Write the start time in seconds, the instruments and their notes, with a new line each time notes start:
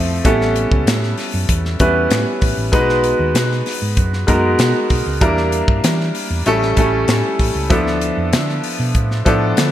Already playing: fingered electric bass F2, grand piano F3 A3 C4 E4 A4
0.24 fingered electric bass A1, grand piano G3 B3 C#4 E4 A4, kick, closed hi-hat
0.41 snare
0.56 closed hi-hat
0.71 fingered electric bass C#2, kick
0.87 fingered electric bass A2, snare, closed hi-hat
1.03 snare
1.18 snare, open hi-hat
1.34 fingered electric bass F#2
1.49 fingered electric bass E2, kick, closed hi-hat
1.65 snare
1.80 fingered electric bass E2, grand piano G3 B3 C#4 E4 B4, kick, closed hi-hat
2.10 fingered electric bass A2, snare, closed hi-hat
2.41 fingered electric bass A1, kick, open hi-hat
2.57 fingered electric bass A1
2.72 fingered electric bass B1, grand piano G#3 B3 D#4 F#4 B4, kick, closed hi-hat
2.89 snare
3.04 closed hi-hat
3.19 fingered electric bass D#2
3.34 fingered electric bass B2, snare, closed hi-hat
3.52 snare
3.66 snare, open hi-hat
3.82 fingered electric bass G#2
3.97 fingered electric bass F#2, kick, closed hi-hat
4.13 snare
4.27 fingered electric bass F#2, grand piano G#3 B3 D#4 F#4 A#4, kick, closed hi-hat
4.59 fingered electric bass B2, snare, closed hi-hat
4.90 fingered electric bass B1, kick, open hi-hat
5.06 fingered electric bass C#2
5.21 fingered electric bass E2, grand piano G3 A#3 D4 E4 A#4, kick, closed hi-hat
5.37 snare
5.52 closed hi-hat
5.68 fingered electric bass G2, kick
5.84 fingered electric bass E3, snare, closed hi-hat
6.00 snare
6.15 open hi-hat
6.30 fingered electric bass E2
6.46 fingered electric bass A1, grand piano G3 A3 C#4 E4 A4, closed hi-hat
6.62 snare
6.77 fingered electric bass A1, grand piano G3 A3 C#4 E4 A4, kick, closed hi-hat
7.08 fingered electric bass A2, snare, closed hi-hat
7.39 fingered electric bass A1, kick, open hi-hat
7.55 fingered electric bass C#2
7.70 fingered electric bass D2, grand piano F3 B3 D4 E4 A4, kick, closed hi-hat
7.87 snare
8.01 closed hi-hat
8.17 fingered electric bass F2
8.33 fingered electric bass D3, snare, closed hi-hat
8.49 snare
8.64 open hi-hat
8.79 fingered electric bass B2
8.95 fingered electric bass A2, kick, closed hi-hat
9.11 snare
9.25 fingered electric bass A2, grand piano F3 B3 D4 E4 A4, kick, closed hi-hat
9.57 fingered electric bass D3, snare, closed hi-hat